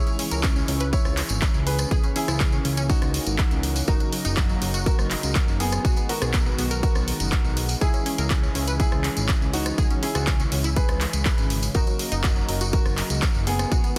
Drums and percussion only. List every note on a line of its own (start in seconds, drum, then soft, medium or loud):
0.07 closed hi-hat soft
0.07 tambourine soft
0.19 open hi-hat loud
0.31 closed hi-hat medium
0.31 tambourine medium
0.43 kick loud
0.43 clap loud
0.43 closed hi-hat medium
0.43 tambourine medium
0.56 tambourine soft
0.68 open hi-hat loud
0.80 closed hi-hat medium
0.80 tambourine medium
0.93 kick loud
0.93 closed hi-hat medium
0.93 tambourine medium
1.05 cross-stick medium
1.05 tambourine soft
1.17 clap medium
1.17 open hi-hat loud
1.29 closed hi-hat medium
1.29 tambourine medium
1.42 kick loud
1.42 clap loud
1.42 closed hi-hat medium
1.42 tambourine medium
1.54 tambourine soft
1.67 open hi-hat loud
1.79 cross-stick medium
1.79 closed hi-hat medium
1.79 tambourine medium
1.91 kick loud
1.91 closed hi-hat medium
1.91 tambourine medium
2.04 closed hi-hat soft
2.04 tambourine soft
2.16 open hi-hat loud
2.28 cross-stick medium
2.28 closed hi-hat soft
2.28 tambourine medium
2.40 kick loud
2.40 clap loud
2.40 closed hi-hat medium
2.40 tambourine medium
2.52 tambourine soft
2.65 open hi-hat loud
2.77 closed hi-hat soft
2.77 tambourine medium
2.89 kick loud
2.89 closed hi-hat medium
2.89 tambourine medium
3.02 cross-stick medium
3.02 closed hi-hat soft
3.02 tambourine soft
3.14 open hi-hat loud
3.27 closed hi-hat medium
3.27 tambourine medium
3.38 kick loud
3.38 clap loud
3.38 closed hi-hat medium
3.38 tambourine medium
3.51 closed hi-hat soft
3.51 tambourine soft
3.63 open hi-hat loud
3.76 open hi-hat medium
3.76 tambourine medium
3.87 kick loud
3.87 closed hi-hat medium
3.87 tambourine medium
4.00 closed hi-hat soft
4.00 tambourine soft
4.12 open hi-hat loud
4.25 closed hi-hat soft
4.25 tambourine medium
4.37 kick loud
4.37 clap loud
4.37 closed hi-hat medium
4.37 tambourine medium
4.49 tambourine soft
4.62 open hi-hat loud
4.74 closed hi-hat soft
4.74 tambourine medium
4.86 kick loud
4.86 closed hi-hat medium
4.86 tambourine medium
4.99 cross-stick medium
4.99 tambourine soft
5.11 clap medium
5.11 open hi-hat loud
5.23 closed hi-hat medium
5.23 tambourine medium
5.35 kick loud
5.35 clap loud
5.35 closed hi-hat medium
5.35 tambourine medium
5.48 tambourine soft
5.60 open hi-hat loud
5.72 cross-stick medium
5.72 closed hi-hat medium
5.72 tambourine medium
5.85 kick loud
5.85 closed hi-hat medium
5.85 tambourine medium
5.96 closed hi-hat soft
5.96 tambourine soft
6.09 open hi-hat loud
6.22 cross-stick medium
6.22 closed hi-hat medium
6.22 tambourine medium
6.33 kick loud
6.33 clap loud
6.33 closed hi-hat medium
6.33 tambourine medium
6.46 tambourine soft
6.58 open hi-hat loud
6.71 closed hi-hat medium
6.71 tambourine medium
6.83 kick loud
6.83 closed hi-hat medium
6.83 tambourine medium
6.95 cross-stick medium
6.95 tambourine soft
7.08 open hi-hat loud
7.20 closed hi-hat medium
7.20 tambourine medium
7.32 kick loud
7.32 clap loud
7.32 closed hi-hat medium
7.44 tambourine soft
7.57 open hi-hat loud
7.69 open hi-hat medium
7.69 tambourine medium
7.81 kick loud
7.81 closed hi-hat medium
7.81 tambourine medium
7.94 closed hi-hat soft
7.94 tambourine soft
8.06 open hi-hat loud
8.18 closed hi-hat medium
8.18 tambourine medium
8.30 kick loud
8.30 clap loud
8.30 closed hi-hat medium
8.30 tambourine medium
8.43 tambourine soft
8.55 open hi-hat loud
8.68 closed hi-hat medium
8.68 tambourine medium
8.80 kick loud
8.80 closed hi-hat medium
8.80 tambourine medium
8.92 cross-stick medium
8.92 tambourine soft
9.04 clap medium
9.04 open hi-hat loud
9.17 closed hi-hat medium
9.17 tambourine medium
9.28 kick loud
9.28 clap loud
9.28 closed hi-hat medium
9.28 tambourine medium
9.42 tambourine soft
9.54 open hi-hat loud
9.66 cross-stick medium
9.66 closed hi-hat medium
9.66 tambourine medium
9.78 kick loud
9.78 closed hi-hat medium
9.78 tambourine medium
9.90 closed hi-hat soft
9.90 tambourine soft
10.03 open hi-hat loud
10.15 cross-stick medium
10.15 closed hi-hat medium
10.15 tambourine medium
10.27 kick loud
10.27 clap loud
10.27 closed hi-hat medium
10.27 tambourine medium
10.40 closed hi-hat soft
10.40 tambourine soft
10.52 open hi-hat loud
10.64 closed hi-hat medium
10.64 tambourine medium
10.76 kick loud
10.76 closed hi-hat medium
10.76 tambourine medium
10.88 cross-stick medium
10.88 closed hi-hat soft
10.88 tambourine soft
11.01 clap medium
11.01 open hi-hat loud
11.13 closed hi-hat medium
11.13 tambourine medium
11.25 kick loud
11.25 clap loud
11.25 closed hi-hat medium
11.25 tambourine medium
11.38 closed hi-hat soft
11.38 tambourine soft
11.50 open hi-hat loud
11.63 open hi-hat medium
11.63 tambourine medium
11.74 kick loud
11.74 closed hi-hat medium
11.74 tambourine medium
11.87 closed hi-hat soft
11.87 tambourine soft
11.99 open hi-hat loud
12.12 closed hi-hat medium
12.12 tambourine medium
12.24 kick loud
12.24 clap loud
12.24 closed hi-hat medium
12.24 tambourine medium
12.36 tambourine soft
12.49 open hi-hat loud
12.61 closed hi-hat medium
12.61 tambourine medium
12.73 kick loud
12.73 closed hi-hat medium
12.73 tambourine medium
12.86 cross-stick medium
12.86 tambourine soft
12.97 clap medium
12.97 open hi-hat loud
13.10 closed hi-hat medium
13.10 tambourine medium
13.22 kick loud
13.22 clap loud
13.22 closed hi-hat medium
13.22 tambourine medium
13.35 tambourine soft
13.47 open hi-hat loud
13.59 cross-stick medium
13.59 closed hi-hat medium
13.59 tambourine medium
13.72 kick loud
13.72 closed hi-hat medium
13.72 tambourine medium
13.84 closed hi-hat soft
13.84 tambourine soft